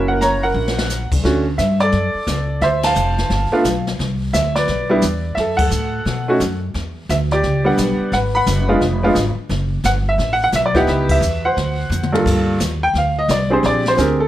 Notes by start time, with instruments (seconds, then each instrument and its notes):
Already playing: upright bass F#1, upright piano A#3 C#4 E4 F#4
0.08 upright piano A#4 F#5
0.21 upright piano C#5 A#5, snare, hi-hat pedal
0.43 upright piano A#4 F#5
0.54 upright bass A#1
0.68 snare
0.79 snare
0.90 snare, hi-hat pedal
1.11 upright bass C2, kick, crash
1.24 upright bass D2, upright piano A3 C#4 D4 F#4, brush sweep, kick, snare
1.58 upright bass G2, upright piano E5, kick, snare, hi-hat pedal
1.80 upright piano A4 D5, snare
1.92 upright bass F#2, brush sweep, kick, snare
2.15 muted upright bass stroke
2.27 upright bass C#2, kick, snare, hi-hat pedal
2.61 upright bass D2, upright piano C5 E5, brush sweep, kick, snare
2.83 upright piano F5 A5, snare, ride
2.95 upright bass F1, hi-hat pedal
3.18 snare
3.30 upright bass G1, brush sweep, kick, snare
3.51 upright piano A3 B3 D4 F4, muted upright bass stroke
3.64 upright bass B1, kick, snare, hi-hat pedal
3.87 snare
3.99 upright bass C2, brush sweep, kick, snare
4.33 upright bass D2, upright piano E5, kick, snare, hi-hat pedal
4.56 upright piano B4 D5, snare
4.67 upright bass B1, brush sweep, kick, snare
4.90 upright piano G3 B3 D4 E4
5.02 upright bass E2, kick, snare, hi-hat pedal
5.35 upright bass F#2, upright piano E5, brush sweep, kick, snare
5.40 upright piano A4
5.57 upright piano F#5, kick, crash
5.62 upright piano A4
5.70 upright bass A2, hi-hat pedal
6.05 upright bass B2, brush sweep, kick, snare
6.28 upright piano A3 C#4 D#4 F#4
6.40 upright bass F#2, kick, snare, hi-hat pedal
6.74 upright bass E2, brush sweep, kick, snare
7.09 upright bass D2, upright piano E5, kick, snare, hi-hat pedal
7.31 upright piano G4 D5, snare
7.43 upright bass C#2, brush sweep, kick, snare
7.64 upright piano G3 B3 D4 F#5
7.77 upright bass B1, kick, snare, hi-hat pedal
7.99 muted upright bass stroke
8.12 upright bass G#1, upright piano B4 F#5, brush sweep, kick, snare
8.35 upright piano F#5 B5
8.46 upright bass F#1, kick, snare, hi-hat pedal
8.68 upright piano G#3 B3 D4 F4
8.81 upright bass F1, brush sweep, kick, snare
9.03 upright piano G#3 B3 D4 F4
9.15 upright bass G#1, kick, snare, hi-hat pedal
9.36 muted upright bass stroke
9.49 upright bass F#1, brush sweep, kick, snare
9.84 upright bass G1, upright piano F#5, kick, snare, hi-hat pedal
10.09 upright piano E5
10.18 upright bass A1, brush sweep, kick, snare
10.33 upright piano F#5
10.44 upright piano F#5
10.52 upright bass B1, upright piano E5, kick, snare, hi-hat pedal
10.66 upright piano D5
10.75 upright piano B3 D#4 E4 G4 F#5, kick, snare
10.87 upright bass C#2, upright piano B4 E5, brush sweep, kick, snare
11.09 upright piano E5, kick, crash
11.21 upright bass E2, hi-hat pedal
11.45 upright piano C5 F#5
11.57 upright bass D2, brush sweep, kick, snare
11.90 upright bass F2, hi-hat pedal, mid tom
12.03 mid tom
12.13 upright piano G2 A#3 D4 F4 A4, mid tom
12.25 upright bass G2, brush sweep, kick, snare, crash
12.60 upright bass D#2, kick, snare, hi-hat pedal
12.83 upright piano G5
12.94 upright bass D2, brush sweep, kick, snare
12.98 upright piano F5
13.19 upright piano D#5
13.28 upright bass C2, upright piano D5, kick, snare, hi-hat pedal
13.50 upright piano C4 D4 G4 G#4 C5
13.63 upright bass A#1, upright piano D5, brush sweep, kick, snare
13.86 upright piano C5, snare
13.97 upright bass D2, upright piano C4 D4 G4 G#4 A#4, kick, snare, hi-hat pedal
14.20 upright piano A4